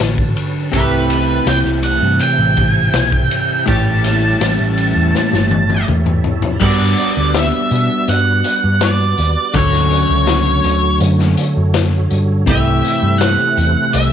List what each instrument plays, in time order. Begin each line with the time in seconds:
Already playing: clean electric guitar D3 F#3 A3 C#4 F#4, tonewheel organ B4 C#5 A5
0.00 picked electric bass A1, snare, ride
0.18 kick
0.35 ride, shaker
0.72 picked electric bass C2, clean electric guitar C3 E3 A3 E4 G4, tonewheel organ C4 G4 E5 A5, lead electric guitar B4, kick, ride, shaker
1.09 ride, shaker
1.28 shaker
1.46 picked electric bass C2, lead electric guitar G5, snare, ride, shaker
1.65 picked electric bass C2, snare
1.83 lead electric guitar F#5, ride, shaker
2.02 picked electric bass G2
2.20 lead electric guitar G5, ride, shaker
2.39 picked electric bass A1, shaker
2.57 kick, ride, shaker
2.72 lead electric guitar G#5
2.85 lead electric guitar G5
2.93 picked electric bass B1, snare, ride, shaker
3.00 lead electric guitar G#5
3.12 lead electric guitar G5, kick
3.30 ride, shaker
3.66 picked electric bass A1, clean electric guitar A2 E3 G3 C#4 G4, tonewheel organ C#5 A5, lead electric guitar A5, kick, ride, shaker
3.87 shaker
4.04 snare, ride, shaker
4.22 shaker
4.40 picked electric bass A1, snare, ride, shaker
4.59 picked electric bass A1, shaker
4.77 ride, shaker
4.95 picked electric bass E2, shaker
5.14 snare, shaker
5.32 picked electric bass G1, snare, shaker
5.51 high tom, shaker
5.70 high tom, shaker
5.87 picked electric bass E2, mid tom, shaker
6.06 mid tom
6.24 floor tom, shaker
6.42 floor tom, shaker
6.60 picked electric bass G2, clean electric guitar G3 B3 D4 F#4, tonewheel organ F#4 B4 D5, lead electric guitar D5, kick, crash, shaker
6.97 closed hi-hat, shaker
7.16 picked electric bass D2, shaker
7.34 lead electric guitar E5, snare, closed hi-hat, shaker
7.71 picked electric bass B2, closed hi-hat, shaker
8.08 picked electric bass G2, lead electric guitar F#5, closed hi-hat, shaker
8.44 closed hi-hat, shaker
8.64 picked electric bass G2
8.81 lead electric guitar D5, snare, closed hi-hat, shaker
9.18 picked electric bass D#2, closed hi-hat, shaker
9.54 picked electric bass D2, clean electric guitar D3 F#3 A3 C#4 F#4, tonewheel organ A4 C#5, lead electric guitar C#5, kick, closed hi-hat, shaker
9.73 snare
9.91 closed hi-hat, shaker
10.10 picked electric bass C#2, shaker
10.27 snare, closed hi-hat, shaker
10.64 picked electric bass D2, closed hi-hat, shaker
11.00 picked electric bass F#2, closed hi-hat, shaker
11.19 snare
11.37 closed hi-hat, shaker
11.57 picked electric bass F#2
11.74 snare, closed hi-hat, shaker
12.10 picked electric bass G2, closed hi-hat, shaker
12.29 shaker
12.46 picked electric bass C2, clean electric guitar C3 E3 A3 E4 G4, tonewheel organ E4 G4 C5, lead electric guitar E5, kick, closed hi-hat, shaker
12.83 closed hi-hat, shaker
13.02 picked electric bass G2, shaker
13.18 lead electric guitar F#5, snare, closed hi-hat, shaker
13.56 picked electric bass E2, closed hi-hat, shaker
13.93 picked electric bass C2, lead electric guitar E5, closed hi-hat, shaker